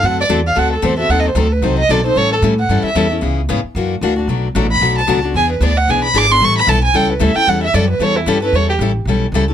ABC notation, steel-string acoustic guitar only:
X:1
M:4/4
L:1/8
Q:"Swing" 1/4=226
K:Amix
V:1 name="Steel-string acoustic guitar"
[D,A,=CFA] z [D,A,CFA] z [D,A,CFA] z [D,A,CFA] [CFA] | [^D,F,^B,^DA] z [D,F,B,DA] z [D,F,B,DA] z [D,F,B,DA] [B,DA] | [E,G,CEA] z [E,G,CEA] z [E,G,CEA] z [E,G,CEA] [CEA] | [C,E,B,C^G] z [C,E,B,CG] z [E,^A,DF] z [E,A,DF] [A,DF] |
[B,,F,A,DF] z [B,,F,A,DF] z [B,,F,A,DF] z [B,,F,A,DF] [A,DF] | [E,B,D^G] z [E,B,DG] z [E,B,DG] z [E,B,DG] [B,DG] | [E,G,CEA] z [E,G,CEA] z [E,G,CEA] z [E,G,CEA] [CEA] | [E,G,CEA] z [E,G,CEA] z [E,G,CEA] z [E,G,CEA] [CEA] |
[E,G,CEA] z [E,G,CEA] z [E,G,CEA] z [E,G,CEA] [CEA] |]